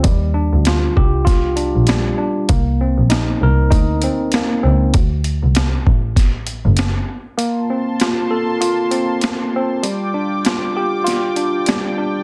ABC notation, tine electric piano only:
X:1
M:4/4
L:1/8
Q:"Swing 16ths" 1/4=98
K:Fmix
V:1 name="Tine electric piano"
G, D F G F D G, D | B, C E B E C B, C | z8 | B, C F A F C B, C |
G, D F G F D G, D |]